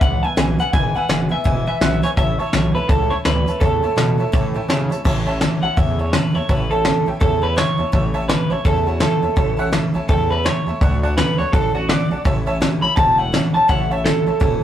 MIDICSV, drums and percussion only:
0, 0, Header, 1, 2, 480
1, 0, Start_track
1, 0, Key_signature, 3, "major"
1, 0, Tempo, 359712
1, 978, Time_signature, 4, 2, 24, 8
1, 19529, End_track
2, 0, Start_track
2, 0, Title_t, "Drums"
2, 14, Note_on_c, 9, 42, 65
2, 16, Note_on_c, 9, 36, 121
2, 147, Note_off_c, 9, 42, 0
2, 149, Note_off_c, 9, 36, 0
2, 496, Note_on_c, 9, 38, 119
2, 496, Note_on_c, 9, 42, 73
2, 630, Note_off_c, 9, 38, 0
2, 630, Note_off_c, 9, 42, 0
2, 791, Note_on_c, 9, 42, 66
2, 925, Note_off_c, 9, 42, 0
2, 976, Note_on_c, 9, 42, 68
2, 980, Note_on_c, 9, 36, 111
2, 1109, Note_off_c, 9, 42, 0
2, 1113, Note_off_c, 9, 36, 0
2, 1460, Note_on_c, 9, 38, 105
2, 1460, Note_on_c, 9, 42, 64
2, 1593, Note_off_c, 9, 38, 0
2, 1593, Note_off_c, 9, 42, 0
2, 1936, Note_on_c, 9, 42, 61
2, 1941, Note_on_c, 9, 36, 114
2, 2070, Note_off_c, 9, 42, 0
2, 2074, Note_off_c, 9, 36, 0
2, 2420, Note_on_c, 9, 38, 118
2, 2420, Note_on_c, 9, 42, 59
2, 2554, Note_off_c, 9, 38, 0
2, 2554, Note_off_c, 9, 42, 0
2, 2710, Note_on_c, 9, 42, 69
2, 2843, Note_off_c, 9, 42, 0
2, 2897, Note_on_c, 9, 42, 64
2, 2900, Note_on_c, 9, 36, 113
2, 3031, Note_off_c, 9, 42, 0
2, 3033, Note_off_c, 9, 36, 0
2, 3376, Note_on_c, 9, 38, 111
2, 3376, Note_on_c, 9, 42, 65
2, 3510, Note_off_c, 9, 38, 0
2, 3510, Note_off_c, 9, 42, 0
2, 3859, Note_on_c, 9, 36, 121
2, 3859, Note_on_c, 9, 42, 65
2, 3993, Note_off_c, 9, 36, 0
2, 3993, Note_off_c, 9, 42, 0
2, 4337, Note_on_c, 9, 38, 112
2, 4337, Note_on_c, 9, 42, 66
2, 4470, Note_off_c, 9, 38, 0
2, 4470, Note_off_c, 9, 42, 0
2, 4636, Note_on_c, 9, 42, 67
2, 4770, Note_off_c, 9, 42, 0
2, 4821, Note_on_c, 9, 36, 113
2, 4826, Note_on_c, 9, 42, 65
2, 4955, Note_off_c, 9, 36, 0
2, 4960, Note_off_c, 9, 42, 0
2, 5305, Note_on_c, 9, 38, 108
2, 5305, Note_on_c, 9, 42, 63
2, 5438, Note_off_c, 9, 38, 0
2, 5438, Note_off_c, 9, 42, 0
2, 5784, Note_on_c, 9, 36, 114
2, 5786, Note_on_c, 9, 42, 61
2, 5918, Note_off_c, 9, 36, 0
2, 5920, Note_off_c, 9, 42, 0
2, 6267, Note_on_c, 9, 38, 122
2, 6267, Note_on_c, 9, 42, 68
2, 6401, Note_off_c, 9, 38, 0
2, 6401, Note_off_c, 9, 42, 0
2, 6565, Note_on_c, 9, 42, 69
2, 6698, Note_off_c, 9, 42, 0
2, 6744, Note_on_c, 9, 36, 109
2, 6747, Note_on_c, 9, 49, 97
2, 6877, Note_off_c, 9, 36, 0
2, 6881, Note_off_c, 9, 49, 0
2, 7218, Note_on_c, 9, 38, 96
2, 7218, Note_on_c, 9, 46, 54
2, 7352, Note_off_c, 9, 38, 0
2, 7352, Note_off_c, 9, 46, 0
2, 7703, Note_on_c, 9, 36, 113
2, 7705, Note_on_c, 9, 46, 58
2, 7837, Note_off_c, 9, 36, 0
2, 7838, Note_off_c, 9, 46, 0
2, 8180, Note_on_c, 9, 38, 112
2, 8180, Note_on_c, 9, 46, 59
2, 8314, Note_off_c, 9, 38, 0
2, 8314, Note_off_c, 9, 46, 0
2, 8660, Note_on_c, 9, 46, 51
2, 8664, Note_on_c, 9, 36, 105
2, 8793, Note_off_c, 9, 46, 0
2, 8797, Note_off_c, 9, 36, 0
2, 9138, Note_on_c, 9, 38, 108
2, 9272, Note_off_c, 9, 38, 0
2, 9624, Note_on_c, 9, 46, 50
2, 9625, Note_on_c, 9, 36, 121
2, 9757, Note_off_c, 9, 46, 0
2, 9758, Note_off_c, 9, 36, 0
2, 10110, Note_on_c, 9, 38, 118
2, 10244, Note_off_c, 9, 38, 0
2, 10586, Note_on_c, 9, 36, 114
2, 10590, Note_on_c, 9, 46, 49
2, 10720, Note_off_c, 9, 36, 0
2, 10723, Note_off_c, 9, 46, 0
2, 11068, Note_on_c, 9, 38, 104
2, 11201, Note_off_c, 9, 38, 0
2, 11541, Note_on_c, 9, 46, 57
2, 11544, Note_on_c, 9, 36, 107
2, 11674, Note_off_c, 9, 46, 0
2, 11677, Note_off_c, 9, 36, 0
2, 12014, Note_on_c, 9, 38, 107
2, 12148, Note_off_c, 9, 38, 0
2, 12494, Note_on_c, 9, 46, 53
2, 12501, Note_on_c, 9, 36, 110
2, 12627, Note_off_c, 9, 46, 0
2, 12634, Note_off_c, 9, 36, 0
2, 12978, Note_on_c, 9, 38, 113
2, 13111, Note_off_c, 9, 38, 0
2, 13465, Note_on_c, 9, 46, 53
2, 13466, Note_on_c, 9, 36, 115
2, 13599, Note_off_c, 9, 36, 0
2, 13599, Note_off_c, 9, 46, 0
2, 13953, Note_on_c, 9, 38, 115
2, 14087, Note_off_c, 9, 38, 0
2, 14429, Note_on_c, 9, 36, 117
2, 14431, Note_on_c, 9, 46, 46
2, 14562, Note_off_c, 9, 36, 0
2, 14565, Note_off_c, 9, 46, 0
2, 14913, Note_on_c, 9, 38, 111
2, 14913, Note_on_c, 9, 46, 50
2, 15046, Note_off_c, 9, 38, 0
2, 15046, Note_off_c, 9, 46, 0
2, 15389, Note_on_c, 9, 36, 125
2, 15393, Note_on_c, 9, 46, 53
2, 15523, Note_off_c, 9, 36, 0
2, 15527, Note_off_c, 9, 46, 0
2, 15870, Note_on_c, 9, 38, 112
2, 15870, Note_on_c, 9, 46, 61
2, 16003, Note_off_c, 9, 38, 0
2, 16003, Note_off_c, 9, 46, 0
2, 16351, Note_on_c, 9, 36, 109
2, 16353, Note_on_c, 9, 46, 55
2, 16484, Note_off_c, 9, 36, 0
2, 16486, Note_off_c, 9, 46, 0
2, 16836, Note_on_c, 9, 38, 105
2, 16836, Note_on_c, 9, 46, 54
2, 16969, Note_off_c, 9, 38, 0
2, 16969, Note_off_c, 9, 46, 0
2, 17310, Note_on_c, 9, 36, 125
2, 17312, Note_on_c, 9, 46, 51
2, 17444, Note_off_c, 9, 36, 0
2, 17445, Note_off_c, 9, 46, 0
2, 17797, Note_on_c, 9, 38, 121
2, 17797, Note_on_c, 9, 46, 55
2, 17930, Note_off_c, 9, 38, 0
2, 17930, Note_off_c, 9, 46, 0
2, 18270, Note_on_c, 9, 36, 109
2, 18271, Note_on_c, 9, 46, 54
2, 18404, Note_off_c, 9, 36, 0
2, 18404, Note_off_c, 9, 46, 0
2, 18755, Note_on_c, 9, 38, 103
2, 18888, Note_off_c, 9, 38, 0
2, 19230, Note_on_c, 9, 36, 123
2, 19230, Note_on_c, 9, 46, 57
2, 19363, Note_off_c, 9, 36, 0
2, 19363, Note_off_c, 9, 46, 0
2, 19529, End_track
0, 0, End_of_file